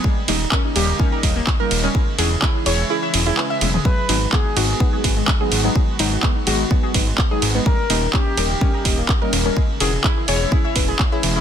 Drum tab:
RD |--x---x---x---x-|--x---x---x---x-|--x---x---x---x-|--x---x---x---x-|
HH |--o---o---o---o-|--o---o---o---o-|--o---o---o---o-|--o---o---o---o-|
CP |----x-------x---|----x-------x---|----x-------x---|----x-------x---|
T1 |----------------|--------------o-|----------------|----------------|
T2 |----------------|---------------o|----------------|----------------|
BD |o---o---o-o-o---|o---o-----------|o---o---o-o-o---|o---o---o-o-o---|

RD |--x---x---x---x-|--x---x---x---x-|
HH |--o---o---o---o-|--o---o---o---o-|
CP |----x-------x---|----x-------x---|
T1 |----------------|----------------|
T2 |----------------|----------------|
BD |o---o---o-o-o---|o---o---o-o-o---|